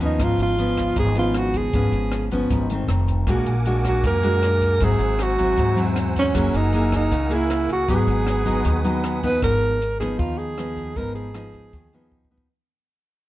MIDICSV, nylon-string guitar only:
0, 0, Header, 1, 2, 480
1, 0, Start_track
1, 0, Key_signature, 5, "minor"
1, 0, Tempo, 384615
1, 245, Time_signature, 4, 2, 24, 8
1, 16582, End_track
2, 0, Start_track
2, 0, Title_t, "Nylon-string guitar"
2, 0, Program_c, 0, 24
2, 0, Note_on_c, 0, 51, 57
2, 1, Note_on_c, 0, 53, 70
2, 7, Note_on_c, 0, 59, 68
2, 15, Note_on_c, 0, 61, 67
2, 225, Note_off_c, 0, 51, 0
2, 257, Note_on_c, 0, 44, 58
2, 686, Note_off_c, 0, 53, 0
2, 686, Note_off_c, 0, 59, 0
2, 687, Note_off_c, 0, 61, 0
2, 734, Note_on_c, 0, 53, 59
2, 741, Note_on_c, 0, 59, 56
2, 753, Note_on_c, 0, 61, 65
2, 1182, Note_off_c, 0, 44, 0
2, 1197, Note_on_c, 0, 44, 56
2, 1410, Note_off_c, 0, 53, 0
2, 1414, Note_off_c, 0, 59, 0
2, 1420, Note_off_c, 0, 61, 0
2, 1444, Note_on_c, 0, 53, 57
2, 1451, Note_on_c, 0, 59, 56
2, 1455, Note_on_c, 0, 61, 62
2, 2126, Note_off_c, 0, 53, 0
2, 2127, Note_off_c, 0, 59, 0
2, 2131, Note_off_c, 0, 61, 0
2, 2136, Note_off_c, 0, 44, 0
2, 2168, Note_on_c, 0, 44, 58
2, 2174, Note_on_c, 0, 53, 56
2, 2176, Note_on_c, 0, 59, 56
2, 2182, Note_on_c, 0, 61, 67
2, 2850, Note_off_c, 0, 53, 0
2, 2851, Note_off_c, 0, 59, 0
2, 2854, Note_off_c, 0, 61, 0
2, 2892, Note_on_c, 0, 53, 61
2, 2896, Note_on_c, 0, 59, 58
2, 2904, Note_on_c, 0, 61, 71
2, 3102, Note_off_c, 0, 44, 0
2, 3138, Note_on_c, 0, 44, 56
2, 3330, Note_off_c, 0, 53, 0
2, 3330, Note_off_c, 0, 59, 0
2, 3335, Note_off_c, 0, 61, 0
2, 3381, Note_on_c, 0, 51, 55
2, 3385, Note_on_c, 0, 57, 53
2, 3392, Note_on_c, 0, 60, 54
2, 3587, Note_off_c, 0, 44, 0
2, 4054, Note_off_c, 0, 51, 0
2, 4055, Note_off_c, 0, 57, 0
2, 4059, Note_off_c, 0, 60, 0
2, 4094, Note_on_c, 0, 46, 58
2, 4094, Note_on_c, 0, 56, 58
2, 4099, Note_on_c, 0, 62, 55
2, 4108, Note_on_c, 0, 66, 64
2, 4396, Note_off_c, 0, 56, 0
2, 4400, Note_off_c, 0, 62, 0
2, 4405, Note_off_c, 0, 66, 0
2, 4571, Note_on_c, 0, 56, 62
2, 4575, Note_on_c, 0, 62, 61
2, 4577, Note_on_c, 0, 66, 64
2, 5025, Note_off_c, 0, 46, 0
2, 5053, Note_on_c, 0, 46, 60
2, 5249, Note_off_c, 0, 56, 0
2, 5249, Note_off_c, 0, 62, 0
2, 5251, Note_off_c, 0, 66, 0
2, 5281, Note_on_c, 0, 56, 67
2, 5282, Note_on_c, 0, 62, 60
2, 5286, Note_on_c, 0, 66, 59
2, 5961, Note_off_c, 0, 62, 0
2, 5963, Note_off_c, 0, 56, 0
2, 5965, Note_off_c, 0, 66, 0
2, 5983, Note_off_c, 0, 46, 0
2, 5998, Note_on_c, 0, 44, 56
2, 6001, Note_on_c, 0, 54, 54
2, 6009, Note_on_c, 0, 60, 55
2, 6011, Note_on_c, 0, 64, 65
2, 6682, Note_off_c, 0, 54, 0
2, 6684, Note_off_c, 0, 60, 0
2, 6688, Note_off_c, 0, 64, 0
2, 6717, Note_on_c, 0, 54, 54
2, 6720, Note_on_c, 0, 60, 55
2, 6724, Note_on_c, 0, 64, 73
2, 6936, Note_off_c, 0, 44, 0
2, 6960, Note_on_c, 0, 44, 55
2, 7161, Note_off_c, 0, 54, 0
2, 7162, Note_off_c, 0, 60, 0
2, 7164, Note_off_c, 0, 64, 0
2, 7187, Note_on_c, 0, 54, 64
2, 7195, Note_on_c, 0, 60, 58
2, 7203, Note_on_c, 0, 64, 64
2, 7875, Note_off_c, 0, 54, 0
2, 7880, Note_off_c, 0, 60, 0
2, 7882, Note_off_c, 0, 64, 0
2, 7896, Note_off_c, 0, 44, 0
2, 7911, Note_on_c, 0, 54, 56
2, 7918, Note_on_c, 0, 58, 61
2, 7922, Note_on_c, 0, 64, 60
2, 7923, Note_on_c, 0, 68, 62
2, 8359, Note_off_c, 0, 64, 0
2, 8360, Note_off_c, 0, 58, 0
2, 8363, Note_off_c, 0, 68, 0
2, 8405, Note_on_c, 0, 58, 62
2, 8413, Note_on_c, 0, 64, 53
2, 8415, Note_on_c, 0, 68, 60
2, 8852, Note_off_c, 0, 54, 0
2, 8876, Note_on_c, 0, 49, 58
2, 8880, Note_off_c, 0, 58, 0
2, 8882, Note_off_c, 0, 64, 0
2, 8884, Note_off_c, 0, 68, 0
2, 9103, Note_on_c, 0, 58, 57
2, 9108, Note_on_c, 0, 64, 59
2, 9118, Note_on_c, 0, 68, 64
2, 9792, Note_off_c, 0, 58, 0
2, 9794, Note_off_c, 0, 64, 0
2, 9800, Note_off_c, 0, 68, 0
2, 9813, Note_off_c, 0, 49, 0
2, 9841, Note_on_c, 0, 54, 56
2, 9842, Note_on_c, 0, 44, 59
2, 9848, Note_on_c, 0, 59, 56
2, 9855, Note_on_c, 0, 63, 56
2, 10520, Note_off_c, 0, 54, 0
2, 10525, Note_off_c, 0, 59, 0
2, 10526, Note_off_c, 0, 63, 0
2, 10545, Note_on_c, 0, 54, 60
2, 10551, Note_on_c, 0, 59, 59
2, 10553, Note_on_c, 0, 63, 70
2, 10775, Note_off_c, 0, 44, 0
2, 10788, Note_on_c, 0, 51, 55
2, 10993, Note_off_c, 0, 54, 0
2, 10994, Note_off_c, 0, 59, 0
2, 10997, Note_off_c, 0, 63, 0
2, 11035, Note_on_c, 0, 54, 66
2, 11037, Note_on_c, 0, 59, 55
2, 11044, Note_on_c, 0, 63, 58
2, 11478, Note_off_c, 0, 59, 0
2, 11479, Note_off_c, 0, 54, 0
2, 11480, Note_off_c, 0, 63, 0
2, 11520, Note_on_c, 0, 53, 55
2, 11529, Note_on_c, 0, 59, 59
2, 11529, Note_on_c, 0, 63, 65
2, 11728, Note_off_c, 0, 51, 0
2, 11762, Note_on_c, 0, 44, 55
2, 12200, Note_off_c, 0, 53, 0
2, 12203, Note_off_c, 0, 59, 0
2, 12205, Note_off_c, 0, 63, 0
2, 12498, Note_on_c, 0, 53, 63
2, 12503, Note_on_c, 0, 59, 59
2, 12509, Note_on_c, 0, 63, 67
2, 12695, Note_off_c, 0, 44, 0
2, 12732, Note_on_c, 0, 51, 52
2, 13170, Note_off_c, 0, 53, 0
2, 13171, Note_off_c, 0, 59, 0
2, 13175, Note_off_c, 0, 63, 0
2, 13209, Note_on_c, 0, 53, 48
2, 13213, Note_on_c, 0, 59, 46
2, 13218, Note_on_c, 0, 63, 56
2, 13646, Note_off_c, 0, 53, 0
2, 13646, Note_off_c, 0, 59, 0
2, 13648, Note_off_c, 0, 63, 0
2, 13661, Note_off_c, 0, 51, 0
2, 13688, Note_on_c, 0, 44, 58
2, 13691, Note_on_c, 0, 53, 53
2, 13694, Note_on_c, 0, 59, 51
2, 13697, Note_on_c, 0, 63, 56
2, 14126, Note_off_c, 0, 53, 0
2, 14126, Note_off_c, 0, 59, 0
2, 14129, Note_off_c, 0, 63, 0
2, 14155, Note_on_c, 0, 53, 56
2, 14158, Note_on_c, 0, 59, 53
2, 14168, Note_on_c, 0, 63, 58
2, 14620, Note_off_c, 0, 44, 0
2, 14654, Note_on_c, 0, 51, 52
2, 14839, Note_off_c, 0, 53, 0
2, 14839, Note_off_c, 0, 59, 0
2, 14845, Note_off_c, 0, 63, 0
2, 14898, Note_on_c, 0, 53, 52
2, 14905, Note_on_c, 0, 59, 53
2, 14910, Note_on_c, 0, 63, 61
2, 15331, Note_off_c, 0, 53, 0
2, 15333, Note_off_c, 0, 59, 0
2, 15336, Note_off_c, 0, 63, 0
2, 15358, Note_on_c, 0, 53, 50
2, 15364, Note_on_c, 0, 59, 59
2, 15370, Note_on_c, 0, 63, 57
2, 15561, Note_off_c, 0, 53, 0
2, 15564, Note_off_c, 0, 59, 0
2, 15565, Note_off_c, 0, 63, 0
2, 15583, Note_off_c, 0, 51, 0
2, 16582, End_track
0, 0, End_of_file